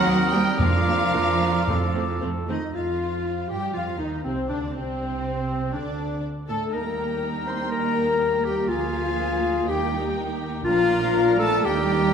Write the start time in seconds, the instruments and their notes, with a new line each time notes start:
Already playing: trombone section D#3 C4, cello section F#3, french horn section F#3, violin section F#4 F#5, oboe A#4, trumpet section A#4
0.05 double bass section D#2, viola section A#3 C4, flute section D#6
0.32 french horn section G3, cello section G3, viola section A#3 C4, violin section G4 G5, oboe A#4
0.59 timpani F2, double bass section F2, trombone section F3 D4, french horn section F3, cello section F3, viola section A#3 D4, violin section F4 F5, oboe A#4, flute section D6
0.88 viola section A#3 D4
1.14 double bass section F2, viola section A#3 D4
1.41 viola section A#3 D4
1.67 timpani F2, double bass section F2, viola section A3 C4, trombone section C4, trumpet section A4
1.95 viola section A3 C4
2.22 double bass section F2, viola section A3 C4
2.48 cello section D#3, viola section A3 C4, french horn section D#4, clarinet D#4, flute section D#5, violin section D#5
2.73 double bass section F2, cello section F3, trombone section F3, french horn section F4, trumpet section F4, violin section F4 F5, viola section F4, clarinet F4, flute section F5
3.48 double bass section G2, cello section G3, trombone section G3, violin section G4 G5, french horn section G4, trumpet section G4, viola section G4, clarinet G4, flute section G5
3.74 double bass section F2, trombone section F3, cello section F3, clarinet F4, viola section F4, trumpet section F4, violin section F4 F5, french horn section F4, flute section F5
3.99 double bass section D#2, trombone section D#3, cello section D#3, clarinet D#4, viola section D#4, trumpet section D#4, violin section D#4 D#5, french horn section D#4, flute section D#5
4.24 double bass section C2, cello section C3, trombone section C3, clarinet C4, trumpet section C4, viola section C4, violin section C4 C5, french horn section C4, flute section C5
4.49 double bass section D2, cello section D3, trombone section D3, clarinet D4, french horn section D4, viola section D4, trumpet section D4, violin section D4 D5, flute section D5
4.74 double bass section C2, cello section C3, trombone section C3, clarinet C4, violin section C4 C5, trumpet section C4, viola section C4, french horn section C4, flute section C5
5.73 double bass section D2, cello section D3, trombone section D3, clarinet D4, violin section D4 D5, viola section D4, trumpet section D4, french horn section D4, flute section D5
6.48 double bass section A2, trombone section A3, cello section A3, violin section A4 A5, french horn section A4, viola section A4, trumpet section A4, clarinet A4, flute section A5
6.72 double bass section D#2, trombone section G3 A#3, viola section A#3 D#4, cello section A#3, trumpet section A#4, violin section A#4 G5 A#5, french horn section A#4, clarinet A#4, flute section A#5
7.47 cello section C4, french horn section C5, clarinet C5, flute section C6, violin section C6
7.71 cello section A#3, clarinet A#4, french horn section A#4, flute section A#5, violin section A#5
8.44 cello section G3, clarinet G4, french horn section G4, violin section G5, flute section G5
8.69 double bass section D2, trombone section F3, cello section F3, clarinet F4, french horn section F4, viola section F4, trumpet section G#4, violin section F5 G#5, flute section F5
9.67 double bass section D#2, trombone section D#3, cello section G3, viola section D#4, french horn section G4, trumpet section G4, clarinet G4, flute section G5, violin section G5
10.65 double bass section A#1, cello section F3, trombone section F3 D4, viola section A#3 D4, clarinet F4, french horn section F4, trumpet section A#4, violin section A#4 F5 A#5, flute section F5
11.39 cello section A3, clarinet A4, french horn section A4, flute section A5, violin section A5
11.63 double bass section D#2, trombone section D#3 D4, cello section G3, viola section D#4, french horn section G4, clarinet G4, trumpet section A#4, violin section D5 G5, flute section G5